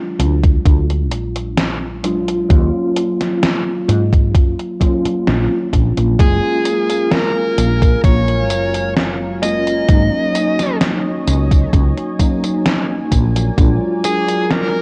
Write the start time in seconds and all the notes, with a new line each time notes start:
Already playing: F#3 G#3 D4 F4
0.19 D2, closed hi-hat
0.43 kick, closed hi-hat
0.65 D2, kick, closed hi-hat
0.90 closed hi-hat
1.11 A#1, closed hi-hat
1.36 closed hi-hat
1.57 snare, closed hi-hat
2.03 F#3 G#3 D4 F4, closed hi-hat
2.28 closed hi-hat
2.49 D#2 F#3 A#3 C#4 F4, kick, closed hi-hat
2.96 closed hi-hat
3.21 snare, closed hi-hat
3.43 snare, closed hi-hat
3.88 G#2, closed hi-hat
4.13 kick, closed hi-hat
4.35 F#2, kick, closed hi-hat
4.59 closed hi-hat
4.80 F#3 A#3 C#4 F4, kick, closed hi-hat
5.05 muted fretless electric bass stroke, closed hi-hat
5.27 A#1, snare, closed hi-hat
5.73 A#1, kick, closed hi-hat
5.97 A#1, closed hi-hat
6.18 F#1 F#3 G#3 A#3 C#4 F4 G#4 A#4 F5 G#5, kick, closed hi-hat, tambourine
6.65 closed hi-hat, tambourine
6.90 closed hi-hat, tambourine
7.12 A#4, snare, closed hi-hat, tambourine
7.58 A#1, closed hi-hat, tambourine
7.82 kick, closed hi-hat, tambourine
8.04 A#1 C#5, kick, closed hi-hat, tambourine
8.28 closed hi-hat
8.50 F#1, closed hi-hat, tambourine
8.74 closed hi-hat, tambourine
8.97 snare, closed hi-hat, tambourine
9.42 G#3 A#3 C#4 F4 D#5, closed hi-hat, tambourine
9.67 closed hi-hat, tambourine
9.88 G#1 F#3 A#3 C#4 D#4 C#5 D#5 G#5, kick, closed hi-hat, tambourine
10.35 closed hi-hat, tambourine
10.59 snare, closed hi-hat, tambourine
10.81 snare, closed hi-hat, tambourine
11.27 C#2, closed hi-hat, tambourine
11.51 kick, closed hi-hat, tambourine
11.73 C#2, kick, closed hi-hat, tambourine
11.98 closed hi-hat
12.19 F#3 A#3 C#4 D#4, kick, closed hi-hat, tambourine
12.44 closed hi-hat, tambourine
12.66 snare, closed hi-hat, tambourine
13.12 A#1 A#4 D5, kick, closed hi-hat, tambourine
13.36 closed hi-hat, tambourine
13.57 A#1 F#3 G#3 D4 F4, kick, closed hi-hat, tambourine
14.04 G#4, closed hi-hat, tambourine
14.28 closed hi-hat, tambourine
14.51 A#4, snare, closed hi-hat, tambourine